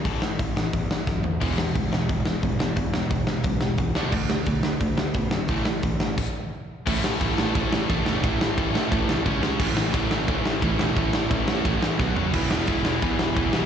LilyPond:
<<
  \new Staff \with { instrumentName = "Overdriven electric guitar" } { \clef bass \time 4/4 \key a \major \tempo 4 = 176 <a, e a>8 <a, e>8 <a, e>8 <a, e>8 <a, e>8 <a, e>8 <a, e>8 <a, e>8 | <e gis b>8 <e gis>8 <e gis>8 <e gis>8 <e gis>8 <e gis>8 <e gis>8 <e gis>8 | <e gis>8 <e gis>8 <e gis>8 <e gis>8 <e gis>8 <e gis>8 <e gis>8 <d a d'>8 | <d a>8 <d a>8 <d a>8 <d a>8 <d a>8 <d a>8 <d a>8 <d a>8 |
<a, e a>8 <a, e>8 <a, e>8 <a, e>8 r2 | <a, e a cis' e' a'>4 <a, e a cis' e' a'>8 <a, e a cis' e' a'>8 <a, e a cis' e' a'>4 <a, e a cis' e' a'>8 <a, e a cis' e' a'>8 | <a, e a cis' e' a'>4 <a, e a cis' e' a'>8 <a, e a cis' e' a'>8 <a, e a cis' e' a'>4 <cis gis cis' gis'>8 <cis gis cis' gis'>8 | <a, e a cis' e'>4 <a, e a cis' e'>8 <a, e a cis' e'>8 <a, e a cis' e'>4 <a, e a cis' e'>8 <a, e a cis' e'>8 |
<a, e a cis' e'>4 <a, e a cis' e'>8 <a, e a cis' e'>8 <a, e a cis' e'>4 <b, fis b fis'>8 <fis cis' fis' cis''>8 | <e b e' gis' b'>4 <e b e' gis' b'>8 <e b e' gis' b'>8 <e b e' gis' b'>4 <e b e' gis' b'>8 <e b e' gis' b'>8 | }
  \new Staff \with { instrumentName = "Overdriven electric guitar" } { \clef bass \time 4/4 \key a \major r1 | <e, b, e>8 <e, b,>8 <e, b,>8 <e, b,>8 <e, b,>8 <e, b,>8 <e, b,>8 <e, b,>8 | <e, b,>8 <e, b,>8 <e, b,>8 <e, b,>8 <e, b,>8 <e, b,>8 <e, b,>8 <d a d'>8 | <d a>8 <d a>8 <d a>8 <d a>8 <d a>8 <d a>8 <d a>8 <d a>8 |
<a, e a>8 <a, e>8 <a, e>8 <a, e>8 r2 | <a, e a>4 <a, e a>8 <a, e a>8 <a, e a>4 <a, e a>8 <a, e a>8 | <a, e a>4 <a, e a>8 <a, e a>8 <a, e a>4 <cis gis cis'>8 <cis gis cis'>8 | <a, e a>4 <a, e a>8 <a, e a>8 <a, e a>4 <a, e a>8 <a, e a>8 |
<a, e a>4 <a, e a>8 <a, e a>8 <a, e a>4 <b, fis b>8 <fis, cis fis>8 | <e, b, e>4 <e, b, e>8 <e, b, e>8 <e, b, e>4 <e, b, e>8 <e, b, e>8 | }
  \new Staff \with { instrumentName = "Picked electric bass" } { \clef bass \time 4/4 \key a \major a,,8 a,8 a,,8 a,,8 e,8 a,,8 fis,8 d,8 | e,,4 d,8 e,,8 e,,8 e,,8 d,8 a,,8 | e,,8 e,8 e,,8 e,,8 b,,8 e,,8 cis,8 d,8 | d,4 b,,8 d,8 d,8 d,8 b,8 fis,8 |
a,,8 a,8 a,,8 a,,8 r2 | a,,8 a,,8 a,,8 a,,8 a,8 a,,8 a,,8 e,,8 | a,,8 a,,8 a,,4 a,,8 c,8 cis,8 cis,8 | a,,8 a,,8 a,,8 a,,8 a,8 a,,8 a,,8 e,,8 |
a,,8 a,,8 a,,4 a,,8 a,,8 b,,8 fis,,8 | e,,8 e,,8 e,,8 e,,8 e,8 e,,8 e,,8 b,,8 | }
  \new DrumStaff \with { instrumentName = "Drums" } \drummode { \time 4/4 <hho bd>8 sn8 <hho bd>8 sn8 <hho bd>8 sn8 <bd sn>8 tomfh8 | <cymc bd>8 sn8 <hho bd>8 sn8 <hho bd>8 sn8 <hho bd>8 sn8 | <hho bd>8 sn8 <hho bd>8 sn8 <hho bd>8 sn8 <hho bd>8 sn8 | <cymc bd>8 sn8 <hho bd>8 sn8 <hho bd>8 sn8 <hho bd>8 sn8 |
<hho bd>8 sn8 <hho bd>8 sn8 <cymc bd>4 r4 | <cymc bd>8 sn8 <bd cymr>8 sn8 <bd cymr>8 sn8 <bd cymr>8 sn8 | <bd cymr>8 sn8 <bd cymr>8 sn8 <bd cymr>8 sn8 <bd cymr>8 sn8 | <cymc bd>8 sn8 <bd cymr>8 sn8 <bd cymr>8 sn8 <bd cymr>8 sn8 |
<bd cymr>8 sn8 <bd cymr>8 sn8 <bd cymr>8 sn8 <bd sn>8 tomfh8 | <cymc bd>8 sn8 <bd cymr>8 sn8 <bd cymr>8 sn8 <bd cymr>8 sn8 | }
>>